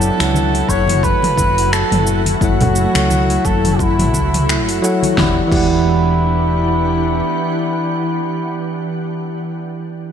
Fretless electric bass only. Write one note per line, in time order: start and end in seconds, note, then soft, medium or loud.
0.20 0.61 C#2 medium
0.69 1.13 F#1 medium
1.38 1.82 F#1 medium
1.91 2.34 F#1 medium
2.41 2.85 F#1 loud
2.95 3.37 C#2 medium
3.45 4.14 F#1 medium
4.14 4.67 C#2 medium
4.67 4.78 F#1 medium
5.17 5.38 E1 medium
5.51 7.20 E1 medium